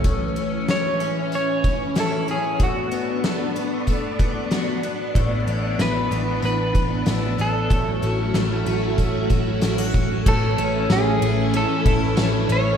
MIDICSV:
0, 0, Header, 1, 7, 480
1, 0, Start_track
1, 0, Key_signature, 3, "major"
1, 0, Tempo, 638298
1, 35, Time_signature, 4, 2, 24, 8
1, 9604, End_track
2, 0, Start_track
2, 0, Title_t, "Celesta"
2, 0, Program_c, 0, 8
2, 7959, Note_on_c, 0, 73, 73
2, 8684, Note_off_c, 0, 73, 0
2, 9604, End_track
3, 0, Start_track
3, 0, Title_t, "Clean electric guitar"
3, 0, Program_c, 1, 27
3, 531, Note_on_c, 1, 73, 89
3, 1008, Note_off_c, 1, 73, 0
3, 1017, Note_on_c, 1, 73, 94
3, 1500, Note_off_c, 1, 73, 0
3, 1503, Note_on_c, 1, 69, 75
3, 1734, Note_off_c, 1, 69, 0
3, 1737, Note_on_c, 1, 68, 76
3, 1973, Note_off_c, 1, 68, 0
3, 1980, Note_on_c, 1, 66, 69
3, 2418, Note_off_c, 1, 66, 0
3, 4374, Note_on_c, 1, 71, 83
3, 4844, Note_off_c, 1, 71, 0
3, 4853, Note_on_c, 1, 71, 88
3, 5571, Note_off_c, 1, 71, 0
3, 5574, Note_on_c, 1, 69, 78
3, 7215, Note_off_c, 1, 69, 0
3, 7733, Note_on_c, 1, 69, 91
3, 8211, Note_off_c, 1, 69, 0
3, 8214, Note_on_c, 1, 68, 85
3, 8695, Note_off_c, 1, 68, 0
3, 8698, Note_on_c, 1, 69, 89
3, 9413, Note_off_c, 1, 69, 0
3, 9416, Note_on_c, 1, 73, 99
3, 9604, Note_off_c, 1, 73, 0
3, 9604, End_track
4, 0, Start_track
4, 0, Title_t, "Twelve-string acoustic guitar"
4, 0, Program_c, 2, 25
4, 0, Note_on_c, 2, 57, 53
4, 0, Note_on_c, 2, 61, 58
4, 0, Note_on_c, 2, 66, 66
4, 32, Note_on_c, 2, 45, 71
4, 82, Note_off_c, 2, 66, 0
4, 270, Note_off_c, 2, 61, 0
4, 273, Note_on_c, 2, 61, 51
4, 512, Note_off_c, 2, 57, 0
4, 515, Note_on_c, 2, 56, 51
4, 745, Note_off_c, 2, 61, 0
4, 754, Note_on_c, 2, 61, 52
4, 995, Note_off_c, 2, 56, 0
4, 1227, Note_off_c, 2, 61, 0
4, 1236, Note_on_c, 2, 61, 49
4, 1476, Note_on_c, 2, 64, 53
4, 1706, Note_off_c, 2, 61, 0
4, 1715, Note_on_c, 2, 61, 48
4, 1944, Note_off_c, 2, 45, 0
4, 1953, Note_on_c, 2, 45, 72
4, 2003, Note_off_c, 2, 61, 0
4, 2004, Note_off_c, 2, 64, 0
4, 2193, Note_on_c, 2, 59, 56
4, 2434, Note_on_c, 2, 57, 51
4, 2676, Note_off_c, 2, 59, 0
4, 2679, Note_on_c, 2, 59, 54
4, 2907, Note_off_c, 2, 57, 0
4, 2916, Note_on_c, 2, 57, 50
4, 3154, Note_off_c, 2, 59, 0
4, 3157, Note_on_c, 2, 59, 54
4, 3396, Note_on_c, 2, 66, 52
4, 3632, Note_off_c, 2, 59, 0
4, 3635, Note_on_c, 2, 59, 51
4, 3871, Note_off_c, 2, 45, 0
4, 3880, Note_on_c, 2, 45, 70
4, 3924, Note_off_c, 2, 57, 0
4, 3924, Note_off_c, 2, 66, 0
4, 4116, Note_off_c, 2, 59, 0
4, 4119, Note_on_c, 2, 59, 53
4, 4359, Note_on_c, 2, 56, 51
4, 4593, Note_off_c, 2, 59, 0
4, 4602, Note_on_c, 2, 59, 54
4, 4837, Note_off_c, 2, 56, 0
4, 5069, Note_off_c, 2, 59, 0
4, 5078, Note_on_c, 2, 59, 51
4, 5322, Note_on_c, 2, 64, 55
4, 5551, Note_off_c, 2, 59, 0
4, 5560, Note_on_c, 2, 59, 46
4, 5789, Note_off_c, 2, 45, 0
4, 5798, Note_on_c, 2, 45, 75
4, 5846, Note_off_c, 2, 59, 0
4, 6037, Note_on_c, 2, 61, 54
4, 6280, Note_on_c, 2, 57, 52
4, 6512, Note_off_c, 2, 61, 0
4, 6515, Note_on_c, 2, 61, 53
4, 6757, Note_off_c, 2, 57, 0
4, 6760, Note_on_c, 2, 57, 53
4, 6992, Note_off_c, 2, 61, 0
4, 6995, Note_on_c, 2, 61, 48
4, 7236, Note_off_c, 2, 64, 0
4, 7239, Note_on_c, 2, 64, 53
4, 7356, Note_off_c, 2, 64, 0
4, 7356, Note_on_c, 2, 66, 46
4, 7474, Note_off_c, 2, 61, 0
4, 7477, Note_on_c, 2, 61, 47
4, 7709, Note_off_c, 2, 45, 0
4, 7718, Note_on_c, 2, 45, 90
4, 7764, Note_off_c, 2, 66, 0
4, 7956, Note_off_c, 2, 61, 0
4, 7959, Note_on_c, 2, 61, 63
4, 8438, Note_on_c, 2, 64, 71
4, 8674, Note_off_c, 2, 61, 0
4, 8677, Note_on_c, 2, 61, 61
4, 8914, Note_off_c, 2, 64, 0
4, 8917, Note_on_c, 2, 64, 68
4, 9392, Note_off_c, 2, 57, 0
4, 9394, Note_off_c, 2, 61, 0
4, 9397, Note_on_c, 2, 61, 58
4, 9604, Note_off_c, 2, 45, 0
4, 9604, Note_off_c, 2, 61, 0
4, 9604, Note_off_c, 2, 64, 0
4, 9604, End_track
5, 0, Start_track
5, 0, Title_t, "String machine"
5, 0, Program_c, 3, 50
5, 39, Note_on_c, 3, 52, 76
5, 39, Note_on_c, 3, 61, 83
5, 1938, Note_off_c, 3, 52, 0
5, 1938, Note_off_c, 3, 61, 0
5, 1955, Note_on_c, 3, 62, 84
5, 1962, Note_on_c, 3, 59, 74
5, 3860, Note_off_c, 3, 59, 0
5, 3879, Note_on_c, 3, 59, 69
5, 3882, Note_on_c, 3, 52, 73
5, 5765, Note_off_c, 3, 62, 0
5, 5778, Note_off_c, 3, 59, 0
5, 5780, Note_off_c, 3, 52, 0
5, 5794, Note_on_c, 3, 57, 75
5, 5796, Note_on_c, 3, 64, 85
5, 5801, Note_on_c, 3, 54, 78
5, 7696, Note_off_c, 3, 57, 0
5, 7696, Note_off_c, 3, 64, 0
5, 7699, Note_off_c, 3, 54, 0
5, 7719, Note_on_c, 3, 57, 76
5, 7720, Note_on_c, 3, 61, 93
5, 7721, Note_on_c, 3, 52, 82
5, 9604, Note_off_c, 3, 52, 0
5, 9604, Note_off_c, 3, 57, 0
5, 9604, Note_off_c, 3, 61, 0
5, 9604, End_track
6, 0, Start_track
6, 0, Title_t, "Picked electric bass"
6, 0, Program_c, 4, 34
6, 3875, Note_on_c, 4, 33, 86
6, 4087, Note_off_c, 4, 33, 0
6, 4114, Note_on_c, 4, 33, 78
6, 4326, Note_off_c, 4, 33, 0
6, 4355, Note_on_c, 4, 33, 84
6, 4566, Note_off_c, 4, 33, 0
6, 4598, Note_on_c, 4, 33, 77
6, 4808, Note_off_c, 4, 33, 0
6, 4836, Note_on_c, 4, 33, 87
6, 5047, Note_off_c, 4, 33, 0
6, 5077, Note_on_c, 4, 33, 78
6, 5288, Note_off_c, 4, 33, 0
6, 5318, Note_on_c, 4, 33, 77
6, 5528, Note_off_c, 4, 33, 0
6, 5556, Note_on_c, 4, 33, 76
6, 5767, Note_off_c, 4, 33, 0
6, 5795, Note_on_c, 4, 33, 86
6, 6006, Note_off_c, 4, 33, 0
6, 6037, Note_on_c, 4, 33, 82
6, 6247, Note_off_c, 4, 33, 0
6, 6275, Note_on_c, 4, 33, 79
6, 6486, Note_off_c, 4, 33, 0
6, 6518, Note_on_c, 4, 33, 82
6, 6728, Note_off_c, 4, 33, 0
6, 6756, Note_on_c, 4, 33, 79
6, 6967, Note_off_c, 4, 33, 0
6, 6995, Note_on_c, 4, 33, 79
6, 7207, Note_off_c, 4, 33, 0
6, 7238, Note_on_c, 4, 33, 83
6, 7448, Note_off_c, 4, 33, 0
6, 7478, Note_on_c, 4, 33, 74
6, 7688, Note_off_c, 4, 33, 0
6, 7718, Note_on_c, 4, 33, 106
6, 7928, Note_off_c, 4, 33, 0
6, 7955, Note_on_c, 4, 33, 84
6, 8166, Note_off_c, 4, 33, 0
6, 8195, Note_on_c, 4, 33, 94
6, 8407, Note_off_c, 4, 33, 0
6, 8434, Note_on_c, 4, 33, 94
6, 8751, Note_off_c, 4, 33, 0
6, 8916, Note_on_c, 4, 33, 94
6, 9127, Note_off_c, 4, 33, 0
6, 9156, Note_on_c, 4, 33, 102
6, 9367, Note_off_c, 4, 33, 0
6, 9394, Note_on_c, 4, 33, 96
6, 9604, Note_off_c, 4, 33, 0
6, 9604, End_track
7, 0, Start_track
7, 0, Title_t, "Drums"
7, 34, Note_on_c, 9, 36, 90
7, 34, Note_on_c, 9, 42, 66
7, 109, Note_off_c, 9, 36, 0
7, 109, Note_off_c, 9, 42, 0
7, 272, Note_on_c, 9, 42, 39
7, 347, Note_off_c, 9, 42, 0
7, 515, Note_on_c, 9, 38, 96
7, 517, Note_on_c, 9, 42, 57
7, 591, Note_off_c, 9, 38, 0
7, 592, Note_off_c, 9, 42, 0
7, 754, Note_on_c, 9, 42, 46
7, 830, Note_off_c, 9, 42, 0
7, 993, Note_on_c, 9, 42, 68
7, 1068, Note_off_c, 9, 42, 0
7, 1234, Note_on_c, 9, 42, 52
7, 1235, Note_on_c, 9, 36, 85
7, 1309, Note_off_c, 9, 42, 0
7, 1310, Note_off_c, 9, 36, 0
7, 1470, Note_on_c, 9, 42, 67
7, 1475, Note_on_c, 9, 38, 101
7, 1545, Note_off_c, 9, 42, 0
7, 1550, Note_off_c, 9, 38, 0
7, 1714, Note_on_c, 9, 42, 44
7, 1790, Note_off_c, 9, 42, 0
7, 1954, Note_on_c, 9, 36, 96
7, 1954, Note_on_c, 9, 42, 66
7, 2029, Note_off_c, 9, 36, 0
7, 2029, Note_off_c, 9, 42, 0
7, 2197, Note_on_c, 9, 42, 41
7, 2272, Note_off_c, 9, 42, 0
7, 2437, Note_on_c, 9, 38, 95
7, 2438, Note_on_c, 9, 42, 58
7, 2512, Note_off_c, 9, 38, 0
7, 2514, Note_off_c, 9, 42, 0
7, 2674, Note_on_c, 9, 42, 46
7, 2749, Note_off_c, 9, 42, 0
7, 2911, Note_on_c, 9, 42, 74
7, 2914, Note_on_c, 9, 36, 64
7, 2986, Note_off_c, 9, 42, 0
7, 2989, Note_off_c, 9, 36, 0
7, 3152, Note_on_c, 9, 42, 47
7, 3154, Note_on_c, 9, 36, 92
7, 3228, Note_off_c, 9, 42, 0
7, 3230, Note_off_c, 9, 36, 0
7, 3390, Note_on_c, 9, 42, 70
7, 3395, Note_on_c, 9, 38, 99
7, 3465, Note_off_c, 9, 42, 0
7, 3470, Note_off_c, 9, 38, 0
7, 3635, Note_on_c, 9, 42, 47
7, 3711, Note_off_c, 9, 42, 0
7, 3875, Note_on_c, 9, 36, 98
7, 3875, Note_on_c, 9, 42, 60
7, 3950, Note_off_c, 9, 36, 0
7, 3950, Note_off_c, 9, 42, 0
7, 4115, Note_on_c, 9, 42, 40
7, 4190, Note_off_c, 9, 42, 0
7, 4356, Note_on_c, 9, 38, 98
7, 4358, Note_on_c, 9, 42, 55
7, 4432, Note_off_c, 9, 38, 0
7, 4433, Note_off_c, 9, 42, 0
7, 4597, Note_on_c, 9, 42, 45
7, 4672, Note_off_c, 9, 42, 0
7, 4831, Note_on_c, 9, 42, 72
7, 4907, Note_off_c, 9, 42, 0
7, 5073, Note_on_c, 9, 42, 49
7, 5075, Note_on_c, 9, 36, 89
7, 5148, Note_off_c, 9, 42, 0
7, 5150, Note_off_c, 9, 36, 0
7, 5308, Note_on_c, 9, 42, 69
7, 5313, Note_on_c, 9, 38, 97
7, 5383, Note_off_c, 9, 42, 0
7, 5388, Note_off_c, 9, 38, 0
7, 5552, Note_on_c, 9, 42, 48
7, 5628, Note_off_c, 9, 42, 0
7, 5792, Note_on_c, 9, 42, 70
7, 5794, Note_on_c, 9, 36, 92
7, 5867, Note_off_c, 9, 42, 0
7, 5870, Note_off_c, 9, 36, 0
7, 6033, Note_on_c, 9, 42, 42
7, 6108, Note_off_c, 9, 42, 0
7, 6274, Note_on_c, 9, 38, 92
7, 6275, Note_on_c, 9, 42, 59
7, 6349, Note_off_c, 9, 38, 0
7, 6351, Note_off_c, 9, 42, 0
7, 6518, Note_on_c, 9, 42, 47
7, 6593, Note_off_c, 9, 42, 0
7, 6753, Note_on_c, 9, 42, 75
7, 6755, Note_on_c, 9, 36, 67
7, 6828, Note_off_c, 9, 42, 0
7, 6830, Note_off_c, 9, 36, 0
7, 6992, Note_on_c, 9, 42, 50
7, 6995, Note_on_c, 9, 36, 83
7, 7067, Note_off_c, 9, 42, 0
7, 7071, Note_off_c, 9, 36, 0
7, 7230, Note_on_c, 9, 42, 69
7, 7235, Note_on_c, 9, 38, 103
7, 7306, Note_off_c, 9, 42, 0
7, 7310, Note_off_c, 9, 38, 0
7, 7475, Note_on_c, 9, 42, 47
7, 7478, Note_on_c, 9, 36, 86
7, 7550, Note_off_c, 9, 42, 0
7, 7553, Note_off_c, 9, 36, 0
7, 7717, Note_on_c, 9, 36, 105
7, 7717, Note_on_c, 9, 49, 96
7, 7792, Note_off_c, 9, 36, 0
7, 7792, Note_off_c, 9, 49, 0
7, 7957, Note_on_c, 9, 51, 40
7, 8032, Note_off_c, 9, 51, 0
7, 8196, Note_on_c, 9, 38, 110
7, 8196, Note_on_c, 9, 54, 65
7, 8197, Note_on_c, 9, 51, 53
7, 8271, Note_off_c, 9, 38, 0
7, 8271, Note_off_c, 9, 54, 0
7, 8272, Note_off_c, 9, 51, 0
7, 8439, Note_on_c, 9, 51, 45
7, 8514, Note_off_c, 9, 51, 0
7, 8674, Note_on_c, 9, 51, 68
7, 8750, Note_off_c, 9, 51, 0
7, 8915, Note_on_c, 9, 51, 50
7, 8916, Note_on_c, 9, 36, 98
7, 8990, Note_off_c, 9, 51, 0
7, 8992, Note_off_c, 9, 36, 0
7, 9150, Note_on_c, 9, 51, 69
7, 9153, Note_on_c, 9, 54, 71
7, 9154, Note_on_c, 9, 38, 119
7, 9225, Note_off_c, 9, 51, 0
7, 9228, Note_off_c, 9, 54, 0
7, 9230, Note_off_c, 9, 38, 0
7, 9393, Note_on_c, 9, 51, 46
7, 9469, Note_off_c, 9, 51, 0
7, 9604, End_track
0, 0, End_of_file